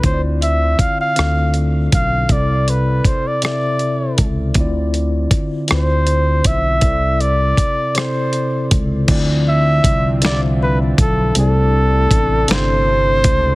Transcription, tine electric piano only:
X:1
M:6/8
L:1/8
Q:3/8=53
K:Ddor
V:1 name="Tine electric piano"
[D,CEF^cd]3 [D,=CDFA]3 | [C,CEAd]3 [C,CEAe]3 | [D,CEFd]3 [D,CEFc]3 | [C,CEAd]3 [C,CEAd]3 |
[D,CEFd]3 [D,CFef]3 | [C,CEAd]3 [C,CDEAc]3 |]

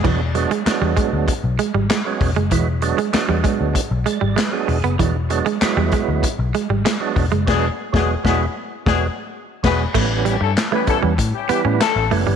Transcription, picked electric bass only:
X:1
M:4/4
L:1/16
Q:1/4=97
K:Emix
V:1 name="Picked electric bass" clef=bass
E,,,3 z2 E,, z D,, z B,,, z G,,, z2 E,,, F,,, | E,,,3 z2 E,, z D,, z B,,, z G,,, z2 E,,, F,,, | E,,,3 z2 E,, z D,, z B,,, z G,,, z2 E,,, F,,, | E,,,2 z E,,,2 E,,,2 z2 E,,,2 z3 E,,,2 |
A,,,3 =G,, z3 E,, A,, z2 A,, z A,,, F,,, =G,,, |]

